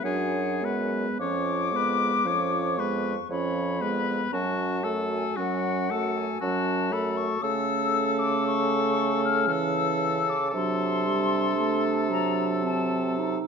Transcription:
0.03 bassoon F#2, french horn F#3, clarinet D4, oboe G#4, flute F#5
0.61 french horn G#3, clarinet B3, oboe B4
1.19 bassoon F2, french horn F3, clarinet C#4, oboe C#5, flute D6
1.72 french horn G#3, clarinet B3
1.77 oboe B4
2.25 bassoon F2, french horn F3, clarinet C#4, oboe C#5
2.77 french horn G#3, clarinet B3, oboe B4, flute C#6
3.29 bassoon F2, french horn F3, clarinet C#4, oboe C#5, flute B5
3.80 french horn G#3, clarinet B3, oboe B4
4.32 bassoon F#2, french horn F#3, clarinet C#4, oboe F#4, flute A5
4.83 french horn A3, clarinet F#4, oboe A4
5.13 flute G#5
5.37 bassoon F#2, french horn F#3, clarinet C#4, oboe F#4, flute F#5
5.90 french horn A3, clarinet F#4, oboe A4
6.17 flute G#5
6.41 bassoon F#2, french horn F#3, clarinet C#4, oboe F#4, flute A5
6.91 french horn A3, clarinet F#4, oboe A4, flute B5
7.16 flute C#6
7.41 bassoon C#3, french horn A3, clarinet C#4, oboe A4, flute E6
8.19 flute D6
8.47 flute C#6
9.24 flute F6
9.48 french horn E3, oboe A4
9.52 flute E6
10.29 flute D6
10.50 bassoon C3, french horn F#3, clarinet D4, oboe A4
10.55 flute C6
11.06 french horn G3
11.57 french horn A3
12.10 french horn F#3, flute A#5
12.63 clarinet C4, flute A5
13.18 clarinet D#4

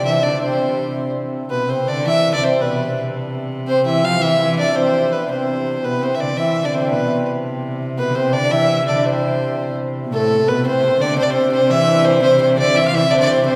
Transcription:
Already playing: viola da gamba C3, hammered dulcimer C4 D4 F4 G4
0.05 viola da gamba E3, hammered dulcimer E4, fiddle E5
0.23 viola da gamba D3, hammered dulcimer D4, fiddle D5
0.41 viola da gamba C3, hammered dulcimer C4, fiddle C5
1.50 viola da gamba B2 C3, hammered dulcimer B3, fiddle B4
1.68 viola da gamba C3, hammered dulcimer C4, fiddle C5
1.87 viola da gamba D3, hammered dulcimer D4, fiddle D5
2.05 viola da gamba E3, hammered dulcimer E4, fiddle E5
2.32 viola da gamba D3, hammered dulcimer D4, fiddle D5
2.42 viola da gamba C3, hammered dulcimer C4, fiddle C5
2.59 viola da gamba B2, hammered dulcimer B3, fiddle B4
3.67 viola da gamba C3, hammered dulcimer C4, fiddle C5
3.86 viola da gamba E3, hammered dulcimer E4, fiddle E5
4.03 viola da gamba F3, hammered dulcimer F4, fiddle F5
4.21 viola da gamba E3, hammered dulcimer E4, fiddle E5
4.39 viola da gamba E3, hammered dulcimer E4
4.58 hammered dulcimer D4, fiddle D5
4.75 viola da gamba C3, hammered dulcimer C4, fiddle C5
5.12 hammered dulcimer B3, fiddle B4
5.29 viola da gamba C3, hammered dulcimer C4, fiddle C5
5.82 viola da gamba B2 C3, hammered dulcimer B3, fiddle B4
6.00 viola da gamba C3, hammered dulcimer C4, fiddle C5
6.15 viola da gamba D3, fiddle E5
6.20 fiddle D5
6.36 viola da gamba E3, hammered dulcimer E4, fiddle E5
6.63 viola da gamba D3, hammered dulcimer D4, fiddle D5
6.74 hammered dulcimer C4, fiddle C5
6.90 viola da gamba B2, hammered dulcimer B3, fiddle B4
7.13 hammered dulcimer C4
7.97 viola da gamba B2, hammered dulcimer B3, fiddle B4
8.10 viola da gamba D3
8.14 viola da gamba C3, hammered dulcimer C4, fiddle C5
8.31 viola da gamba D3, hammered dulcimer D4, fiddle D5
8.50 viola da gamba E3, hammered dulcimer E4, fiddle E5
8.86 viola da gamba D3, hammered dulcimer D4, fiddle D5
9.04 viola da gamba C3, hammered dulcimer C4, fiddle C5
10.04 viola da gamba B2
10.11 viola da gamba A2 C3, hammered dulcimer A3, fiddle A4
10.47 viola da gamba B2, hammered dulcimer B3, fiddle B4
10.64 viola da gamba C3, hammered dulcimer C4, fiddle C5
10.82 viola da gamba C3, hammered dulcimer C4
10.98 viola da gamba D3, hammered dulcimer D4, fiddle D5
11.16 viola da gamba C3, hammered dulcimer C4, fiddle C5
11.23 fiddle D5
11.29 viola da gamba C3, hammered dulcimer C4, fiddle C5
11.51 viola da gamba C3, hammered dulcimer C4, fiddle C5
11.69 viola da gamba E3, hammered dulcimer E4, fiddle E5
11.86 hammered dulcimer D4
12.04 hammered dulcimer C4, fiddle C5
12.21 viola da gamba C3, hammered dulcimer C4, fiddle C5
12.39 viola da gamba C3, hammered dulcimer C4, fiddle C5
12.57 viola da gamba D3, fiddle D5
12.74 viola da gamba E3, hammered dulcimer E4, fiddle E5
12.88 fiddle F5
12.92 viola da gamba E3, hammered dulcimer E4, fiddle E5
13.09 viola da gamba D3, hammered dulcimer D4, fiddle D5
13.14 fiddle C5
13.18 hammered dulcimer D4, fiddle D5
13.27 viola da gamba C3, hammered dulcimer C4, fiddle C5
13.44 viola da gamba C3, hammered dulcimer C4, fiddle C5

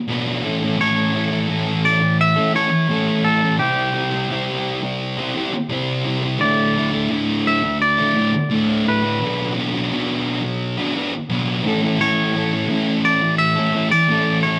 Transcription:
0.08 distorted electric guitar B2 F#3 B3 D4 F#4 B4
0.42 distorted electric guitar A2 E3 A3 C#4 E4 A4
0.60 distorted electric guitar A3 C#4 E4 A4
0.77 distorted electric guitar A2 E3 A3 C#4 E4 A4, clean electric guitar C#5
1.12 distorted electric guitar A3 C#4 E4 A4
1.30 distorted electric guitar A3 C#4 E4 A4
1.48 distorted electric guitar A2 E3 A3 C#4 E4 A4
1.85 clean electric guitar D5
2.02 muted distorted electric guitar stroke
2.21 clean electric guitar E5
2.36 distorted electric guitar A3 C#4 E4 A4
2.53 distorted electric guitar A3 C#4 E4 A4, clean electric guitar C#5
2.71 muted distorted electric guitar stroke
2.88 distorted electric guitar A2 E3 A3 C#4 E4 A4
3.24 distorted electric guitar A3 C#4 E4 A4, clean electric guitar A4
3.42 distorted electric guitar A3 C#4 E4 A4
3.58 distorted electric guitar C3 G3 C4 E4 G4 C5, clean electric guitar G4
3.93 distorted electric guitar C4 E4 G4 C5
4.10 distorted electric guitar E4 G4 C5
4.14 distorted electric guitar C4
4.29 distorted electric guitar C3 G3 C4 E4 G4 C5
4.82 muted distorted electric guitar stroke
5.17 distorted electric guitar C4 E4 G4 C5
5.35 distorted electric guitar C4 E4 G4 C5
5.53 muted distorted electric guitar stroke
5.69 distorted electric guitar C3 G3 C4 E4 G4 C5
6.04 distorted electric guitar C4 E4 G4 C5
6.22 distorted electric guitar C4 E4 G4 C5
6.39 distorted electric guitar D2 A2 D3 A3 E4, clean electric guitar D5
6.75 distorted electric guitar A2 D3 A3 E4
6.92 distorted electric guitar D3 A3 E4
7.09 distorted electric guitar D2 A2 D3 A3 E4
7.47 clean electric guitar E5
7.62 muted distorted electric guitar stroke
7.82 clean electric guitar D5
7.97 distorted electric guitar D3 A3 E4
8.14 distorted electric guitar A2 D3 A3 E4
8.33 muted distorted electric guitar stroke
8.50 distorted electric guitar D2 A2 D3 A3 E4
8.85 distorted electric guitar A2 D3 A3 E4, clean electric guitar B4
9.02 distorted electric guitar D3 A3 E4
9.20 distorted electric guitar B2 F#3 B3 D4 F#4 B4
9.55 distorted electric guitar B3 D4 F#4 B4
9.72 distorted electric guitar B3 D4 F#4 B4
9.90 distorted electric guitar B2 F#3 B3 D4 F#4 B4
10.43 muted distorted electric guitar stroke
10.77 distorted electric guitar B3 D4 F#4 B4
10.95 distorted electric guitar B3 D4 F#4 B4
11.13 muted distorted electric guitar stroke
11.29 distorted electric guitar B2 F#3 B3 D4 F#4 B4
11.64 distorted electric guitar A2 E3 A3 C#4 E4 A4
11.82 distorted electric guitar A3 C#4 E4 A4
11.99 distorted electric guitar A2 E3 A3 C#4 E4 A4, clean electric guitar C#5
12.34 distorted electric guitar A3 C#4 E4 A4
12.51 distorted electric guitar A3 C#4 E4 A4
12.69 distorted electric guitar A2 E3 A3 C#4 E4 A4
13.05 clean electric guitar D5
13.22 muted distorted electric guitar stroke
13.38 clean electric guitar E5
13.56 distorted electric guitar A3 C#4 E4 A4
13.73 distorted electric guitar A3 C#4 E4
13.77 distorted electric guitar A4
13.91 clean electric guitar D5, muted distorted electric guitar stroke
14.08 distorted electric guitar A2 E3 A3 C#4 E4 A4
14.43 distorted electric guitar A3 C#4 E4, clean electric guitar C#5
14.47 distorted electric guitar A4

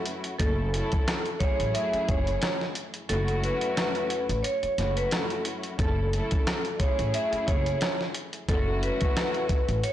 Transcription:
Already playing: string section F#2 A3 C#4 E4 F#4
0.06 closed hi-hat
0.24 closed hi-hat
0.39 upright bass F#1, string section F#2 A3 C#4 E4 A4, vibraphone A4, kick, closed hi-hat
0.73 string section F#2 A3 C#4 E4 A4, closed hi-hat
0.92 kick, closed hi-hat
1.08 cross-stick, snare, closed hi-hat
1.26 closed hi-hat
1.40 string section F#2 A3 C#4 E4 G#4, vibraphone C#5, kick, closed hi-hat
1.60 upright bass A1, closed hi-hat
1.74 vibraphone E5, closed hi-hat
1.93 muted upright bass stroke, closed hi-hat
2.09 upright bass F#1, vibraphone C#5, kick, closed hi-hat
2.27 closed hi-hat
2.42 cross-stick, snare, closed hi-hat
2.61 snare
2.75 closed hi-hat
2.94 closed hi-hat
3.09 upright bass F#1, string section F#2 A3 C#4 E4 F#4, vibraphone A4, closed hi-hat
3.28 closed hi-hat
3.44 vibraphone B4, closed hi-hat
3.61 closed hi-hat
3.77 cross-stick, snare, closed hi-hat
3.95 closed hi-hat
4.10 closed hi-hat
4.29 upright bass A1, closed hi-hat
4.42 vibraphone C#5, closed hi-hat
4.63 muted upright bass stroke, closed hi-hat
4.78 upright bass F#1, string section F#2 A3 C#4 E4 F#4, snare, closed hi-hat
4.96 vibraphone B4, closed hi-hat
5.11 vibraphone A4, cross-stick, snare, closed hi-hat
5.30 closed hi-hat
5.45 closed hi-hat
5.63 closed hi-hat
5.78 upright bass F#1, string section F#2 A3 C#4 E4 A4, vibraphone A4, kick, closed hi-hat
6.13 string section F#2 A3 C#4 E4 A4, closed hi-hat
6.31 kick, closed hi-hat
6.47 cross-stick, snare, closed hi-hat
6.65 closed hi-hat
6.80 string section F#2 A3 C#4 E4 G#4, vibraphone C#5, kick, closed hi-hat
6.99 upright bass A1, closed hi-hat
7.14 vibraphone E5, closed hi-hat
7.33 muted upright bass stroke, closed hi-hat
7.47 upright bass F#1, vibraphone C#5, kick, closed hi-hat
7.66 closed hi-hat
7.81 cross-stick, snare, closed hi-hat
8.01 snare
8.14 closed hi-hat
8.33 closed hi-hat
8.49 upright bass F#1, string section F#2 A3 C#4 E4 F#4, vibraphone A4, kick, closed hi-hat
8.83 vibraphone B4, closed hi-hat
9.01 kick, closed hi-hat
9.17 cross-stick, snare, closed hi-hat
9.34 closed hi-hat
9.49 kick, closed hi-hat
9.69 upright bass A1, closed hi-hat
9.84 vibraphone C#5, closed hi-hat

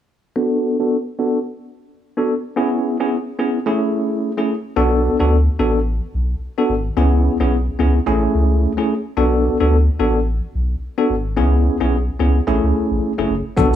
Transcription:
0.36 tine electric piano B3 D4 F#4 A4
0.80 tine electric piano B3 D4 F#4 A4
1.19 tine electric piano B3 D4 F#4 A4
2.17 tine electric piano B3 D4 F#4 A4
2.56 tine electric piano B3 C#4 E4 G#4
3.00 tine electric piano B3 C#4 E4 G#4
3.39 tine electric piano B3 C#4 E4 G#4
3.66 tine electric piano A3 C#4 E4 G#4
4.37 tine electric piano A3 C#4 E4 G#4
4.76 sub bass B1, tine electric piano B3 D4 F#4 A4
5.20 sub bass D2, tine electric piano B3 D4 F#4 A4
5.59 sub bass A1, tine electric piano B3 D4 F#4 A4
6.14 sub bass B1
6.58 tine electric piano B3 D4 F#4 A4
6.69 sub bass G#1
6.97 sub bass C#2, tine electric piano B3 C#4 E4 G#4
7.40 sub bass B1, tine electric piano B3 C#4 E4 G#4
7.79 sub bass C#2, tine electric piano B3 C#4 E4 G#4
8.06 sub bass A1, tine electric piano A3 C#4 E4 G#4
8.34 sub bass C#2
8.77 tine electric piano A3 C#4 E4 G#4
9.17 sub bass B1, tine electric piano B3 D4 F#4 A4
9.60 sub bass D2, tine electric piano B3 D4 F#4 A4
9.99 sub bass A1, tine electric piano B3 D4 F#4 A4
10.55 sub bass B1
10.98 tine electric piano B3 D4 F#4 A4
11.10 sub bass G#1
11.37 sub bass C#2, tine electric piano B3 C#4 E4 G#4
11.80 sub bass B1, tine electric piano B3 C#4 E4 G#4
12.19 sub bass C#2, tine electric piano B3 C#4 E4 G#4
12.47 sub bass A1, tine electric piano A3 C#4 E4 G#4
12.63 sub bass C#2
12.91 sub bass A1
13.18 sub bass F#1, tine electric piano A3 C#4 E4 G#4
13.30 sub bass F#1
13.57 sub bass B1, tine electric piano B3 D4 F#4 A4, kick, shaker

